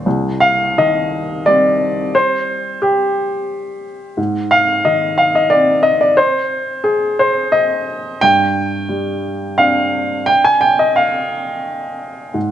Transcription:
0.06 2.10 C2 medium
0.40 0.76 F5 medium
0.78 1.87 D#3 soft
0.78 1.46 D#5 medium
1.46 4.15 G3 soft
1.46 4.15 C4 soft
1.46 2.14 D5 medium
2.15 2.83 C5 medium
2.82 3.83 G4 medium
4.17 6.13 G#2 medium
4.51 4.84 F5 medium
4.85 5.91 D#3 soft
4.85 5.18 D#5 medium
5.18 5.35 F5 medium
5.35 5.52 D#5 medium
5.50 8.17 C4 soft
5.50 5.84 D5 medium
5.83 6.00 D#5 medium
6.01 6.17 D5 medium
6.17 6.85 C5 medium
6.84 7.19 G#4 medium
7.19 7.54 C5 medium
7.52 8.21 D#5 medium
8.21 10.25 G2 medium
8.21 9.59 G5 loud
8.89 10.00 G3 soft
9.58 12.31 C4 soft
9.58 12.31 D4 soft
9.58 10.28 F5 medium
10.26 10.45 G5 medium
10.45 10.62 G#5 medium
10.61 10.79 G5 medium
10.79 10.97 D#5 medium
10.96 11.31 F5 medium
12.34 12.51 G#2 soft

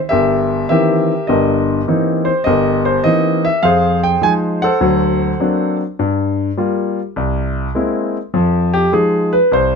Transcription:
0.09 0.62 G1 medium
0.09 0.70 G4 medium
0.09 0.69 A#4 medium
0.09 0.68 E5 medium
0.69 1.11 D#3 medium
0.69 1.11 E3 soft
0.69 1.11 A#3 soft
0.69 1.11 C4 soft
0.69 1.28 G4 medium
0.69 1.28 A#4 medium
0.69 1.30 E5 medium
1.27 1.79 G1 medium
1.27 1.80 G2 medium
1.27 2.42 G4 soft
1.27 2.42 A#4 medium
1.27 1.82 D#5 medium
1.88 2.28 E3 medium
1.88 2.28 A#3 soft
1.88 2.29 C4 soft
1.88 2.29 D#4 medium
2.25 2.45 C5 medium
2.44 2.97 G1 medium
2.44 3.59 G4 medium
2.44 3.59 A#4 medium
2.44 2.81 D#5 medium
2.85 3.05 C5 medium
3.04 3.46 E3 medium
3.04 3.46 A#3 soft
3.04 3.46 C4 soft
3.04 3.46 D#4 medium
3.04 3.44 D#5 medium
3.45 3.64 E5 medium
3.63 4.14 F2 medium
3.63 4.77 G#4 medium
3.63 4.62 C5 medium
3.63 3.99 F5 medium
4.03 4.21 G5 medium
4.21 4.63 F3 soft
4.21 4.63 G#3 soft
4.21 4.63 D#4 medium
4.21 4.32 G#5 medium
4.62 5.76 A4 medium
4.62 5.76 C5 medium
4.62 5.75 F#5 medium
4.81 5.31 D2 medium
4.81 5.31 F#3 medium
5.40 5.81 F#3 soft
5.40 5.81 A#3 soft
5.40 5.81 C4 soft
5.40 5.81 D4 medium
5.99 6.49 G2 medium
6.57 6.98 G3 soft
6.57 6.98 A#3 soft
6.57 6.98 F4 medium
7.16 7.67 C2 medium
7.75 8.16 G#3 soft
7.75 8.16 A#3 soft
7.75 8.16 C4 soft
7.75 8.16 E4 soft
8.34 8.84 F2 medium
8.34 8.84 F3 medium
8.73 8.91 G4 medium
8.92 9.33 F3 soft
8.92 9.33 G#3 soft
8.92 9.34 D#4 medium
8.92 9.30 G#4 medium
9.33 9.50 B4 medium
9.52 9.75 C2 medium
9.52 9.75 C5 medium

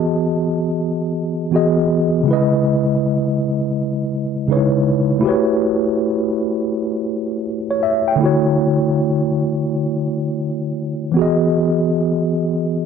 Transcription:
0.00 1.47 E3 medium
0.00 1.48 B3 medium
0.00 1.50 F#4 medium
0.00 1.54 G#4 medium
0.00 1.52 D#5 medium
0.00 2.29 A5 medium
1.51 2.26 E3 medium
1.51 2.27 B3 medium
1.51 2.27 F#4 medium
1.51 2.28 G#4 medium
1.56 2.29 D#5 medium
2.23 4.43 C#3 medium
2.23 4.44 G#3 medium
2.28 4.46 E4 medium
2.28 4.47 B4 medium
2.33 4.48 D#5 medium
4.48 5.23 C#3 medium
4.48 5.23 G#3 medium
4.48 4.58 D#4 soft
4.48 5.24 B4 medium
4.52 5.25 C#5 medium
4.57 5.20 E4 medium
5.19 7.76 A3 medium
5.19 7.77 E4 medium
5.23 7.78 F#4 medium
5.23 7.79 G4 medium
5.27 7.80 B4 medium
5.27 7.44 C#5 medium
7.71 7.82 C#5 medium
7.83 8.06 E5 medium
8.08 8.43 G5 medium
8.16 11.10 D3 medium
8.16 11.11 A3 medium
8.20 11.12 E4 medium
8.20 11.14 F#4 medium
8.25 11.15 C#5 medium
11.12 12.86 E3 medium
11.12 12.86 B3 medium
11.17 12.86 F#4 medium
11.17 12.86 G#4 medium
11.22 12.86 D#5 medium

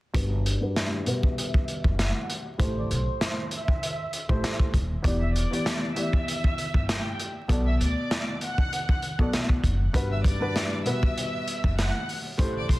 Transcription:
0.14 0.53 G1 loud
0.14 0.57 G2 medium
0.14 0.58 G3 medium
0.14 0.58 F#4 medium
0.14 0.58 B4 loud
0.14 kick loud
0.14 closed hi-hat loud
0.32 0.44 E5 medium
0.32 0.44 E6 medium
0.44 1.02 D5 medium
0.44 1.03 D6 medium
0.44 closed hi-hat medium
0.61 1.02 G2 medium
0.61 1.03 G3 medium
0.61 1.03 F#4 medium
0.61 1.03 B4 medium
0.76 snare loud
0.76 closed hi-hat medium
1.05 2.48 B2 medium
1.05 2.48 G3 medium
1.05 2.49 F#4 medium
1.05 2.49 B4 medium
1.05 1.94 E5 medium
1.05 1.94 E6 medium
1.05 closed hi-hat medium
1.23 kick medium
1.38 closed hi-hat medium
1.54 kick loud
1.68 closed hi-hat medium
1.84 2.10 F#1 medium
1.84 kick medium
1.99 2.26 F#5 medium
1.99 2.26 F#6 medium
1.99 snare loud
1.99 closed hi-hat loud
2.30 closed hi-hat medium
2.58 2.85 A1 loud
2.58 4.01 A2 medium
2.58 4.01 A3 medium
2.58 4.01 G4 medium
2.58 4.02 C5 loud
2.58 kick loud
2.58 closed hi-hat medium
2.78 2.89 D5 medium
2.78 2.90 D6 medium
2.91 3.04 B1 medium
2.91 3.48 C5 medium
2.91 3.49 C6 medium
2.91 closed hi-hat medium
3.21 snare loud
3.21 closed hi-hat medium
3.51 4.40 E5 medium
3.51 4.41 E6 medium
3.51 closed hi-hat medium
3.68 kick medium
3.83 closed hi-hat medium
4.13 closed hi-hat medium
4.28 4.41 A1 medium
4.28 4.70 A2 medium
4.28 4.70 A3 medium
4.28 4.71 G4 medium
4.28 4.71 C5 loud
4.28 kick medium
4.44 snare loud
4.44 closed hi-hat loud
4.59 kick medium
4.74 4.99 D#1 medium
4.74 kick medium
4.74 closed hi-hat medium
5.02 5.43 E1 loud
5.02 5.47 E3 medium
5.02 5.47 B3 medium
5.02 5.47 G4 medium
5.02 5.48 D5 loud
5.02 kick loud
5.02 closed hi-hat medium
5.21 5.33 E5 medium
5.21 5.34 E6 medium
5.35 5.92 D5 medium
5.35 5.93 D6 medium
5.35 closed hi-hat medium
5.51 5.92 E3 medium
5.51 5.93 B3 medium
5.51 5.93 G4 medium
5.51 5.93 D5 loud
5.51 closed hi-hat medium
5.66 snare loud
5.66 closed hi-hat medium
5.95 7.38 E3 medium
5.95 7.38 B3 medium
5.95 7.38 G4 medium
5.95 7.39 D5 medium
5.95 6.83 E5 medium
5.95 6.84 E6 medium
5.95 closed hi-hat medium
6.13 kick medium
6.28 closed hi-hat loud
6.44 kick medium
6.58 closed hi-hat medium
6.74 6.99 G1 medium
6.74 kick medium
6.89 7.17 G4 medium
6.89 7.16 G5 medium
6.89 snare loud
6.89 closed hi-hat loud
7.20 closed hi-hat medium
7.48 7.74 B1 loud
7.48 8.91 B2 medium
7.48 8.91 B3 medium
7.48 8.91 A4 medium
7.48 8.92 D5 loud
7.48 kick loud
7.48 closed hi-hat medium
7.65 7.78 E5 medium
7.65 7.79 E6 medium
7.80 7.94 D2 medium
7.80 8.38 D5 medium
7.80 8.38 D6 medium
7.80 closed hi-hat medium
8.11 snare loud
8.11 closed hi-hat medium
8.41 9.30 F#5 loud
8.41 9.30 F#6 medium
8.41 closed hi-hat medium
8.58 kick medium
8.73 closed hi-hat medium
8.89 kick loud
9.02 closed hi-hat medium
9.19 9.30 B1 medium
9.19 9.60 B2 medium
9.19 9.60 B3 medium
9.19 9.61 A4 medium
9.19 9.61 D5 loud
9.19 kick medium
9.33 snare loud
9.33 closed hi-hat loud
9.49 kick medium
9.64 9.89 F#1 medium
9.64 kick medium
9.64 closed hi-hat medium
9.93 10.33 G1 loud
9.93 10.37 G2 medium
9.93 10.37 G3 medium
9.93 10.38 F#4 medium
9.93 10.38 B4 loud
9.93 kick loud
9.93 closed hi-hat loud
10.11 10.24 E5 medium
10.11 10.24 E6 medium
10.24 10.82 D5 medium
10.24 10.82 D6 medium
10.24 kick medium
10.24 closed hi-hat medium
10.40 10.82 G2 medium
10.40 10.82 G3 medium
10.40 10.83 F#4 medium
10.40 10.83 B4 loud
10.56 snare loud
10.56 closed hi-hat medium
10.84 12.28 B2 medium
10.84 12.28 G3 medium
10.84 12.28 F#4 medium
10.84 12.28 B4 medium
10.84 11.73 E5 medium
10.84 11.73 E6 medium
10.84 closed hi-hat medium
11.03 kick medium
11.18 closed hi-hat loud
11.48 closed hi-hat medium
11.64 11.89 F#1 medium
11.64 kick medium
11.78 12.06 F#5 medium
11.78 12.06 F#6 medium
11.78 snare loud
11.78 closed hi-hat loud
12.09 open hi-hat medium
12.38 12.64 A1 loud
12.38 12.79 A2 loud
12.38 12.79 A3 medium
12.38 12.79 G4 medium
12.38 12.79 C5 loud
12.38 kick loud
12.38 closed hi-hat loud
12.57 12.69 D5 medium
12.57 12.69 D6 medium
12.69 12.79 B1 medium
12.69 12.79 C5 medium
12.69 12.79 C6 medium
12.69 kick medium
12.69 closed hi-hat medium

